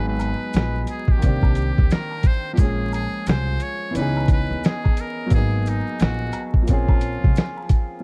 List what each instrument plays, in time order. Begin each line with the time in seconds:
Already playing: upright bass G#1, upright piano F#3 G#3 B3 D#4 G#4
0.09 muted trumpet B4
0.20 closed hi-hat, high woodblock, maracas
0.53 upright bass A#1, snare, closed hi-hat, maracas
0.87 muted trumpet G#4, closed hi-hat, maracas
1.08 muted trumpet G4, kick
1.17 upright piano D#3 A#3
1.22 upright bass C2, upright piano C4 D4, kick, closed hi-hat, maracas
1.28 upright piano G4
1.43 kick, high woodblock
1.55 closed hi-hat, maracas
1.78 upright bass D2, kick
1.90 muted trumpet A#4, snare, closed hi-hat, maracas
2.11 high woodblock
2.23 muted trumpet C5, kick, closed hi-hat, maracas
2.53 upright piano F3 A#3, muted trumpet G4
2.57 upright bass A#1, upright piano G#3 C#4, muted trumpet G#4, kick, closed hi-hat, maracas
2.64 upright piano G#4
2.93 muted trumpet G#4, closed hi-hat, high woodblock, maracas
3.26 upright bass C2, muted trumpet C5, snare, closed hi-hat, maracas
3.60 muted trumpet C#5, closed hi-hat, maracas
3.91 upright piano E3 B3
3.95 upright bass C#2, upright piano C#4 D#4, muted trumpet B4, closed hi-hat, maracas
4.01 upright piano G#4
4.17 high woodblock
4.28 kick, closed hi-hat, maracas
4.33 muted trumpet B4
4.50 upright bass D#2
4.64 muted trumpet G#4, snare, closed hi-hat, maracas
4.84 kick, high woodblock
4.97 muted trumpet A#4, closed hi-hat, maracas
5.26 upright piano F#3 A#3
5.30 upright bass G#1, upright piano B3, muted trumpet G#4, kick, closed hi-hat, maracas
5.35 upright piano D#4 G#4
5.66 muted trumpet D#4, closed hi-hat, maracas
6.00 upright bass A#1, muted trumpet F#4, snare, closed hi-hat, maracas
6.33 closed hi-hat, high woodblock, maracas
6.54 kick
6.62 upright piano F3 A#3
6.67 upright bass A#1, upright piano C4 C#4, muted trumpet F4, kick, closed hi-hat, maracas
6.73 upright piano G#4
6.88 kick, high woodblock
7.01 closed hi-hat, maracas
7.24 upright bass C2, kick
7.36 snare, closed hi-hat, maracas
7.57 high woodblock
7.69 kick, closed hi-hat, maracas
8.00 upright piano F3